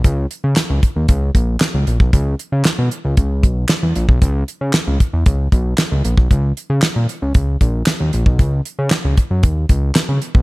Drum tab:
HH |x-x-x-x-x-x-x-x-|x-x-x-x-x-x-x-x-|x-x-x-x-x-x-x-x-|x-x-x-x-x-x-x-x-|
CP |----x-------x---|----x-------x---|----x-------x---|----x-------x---|
SD |----o-------o---|----o-------o---|----o-------o---|----o-------o---|
BD |o-----o-o-o----o|o-------o-o----o|o-----o-o-o----o|o-------o-o----o|

HH |x-x-x-x-x-x-x-x-|
CP |----x-------x---|
SD |----o-------o---|
BD |o-----o-o-o----o|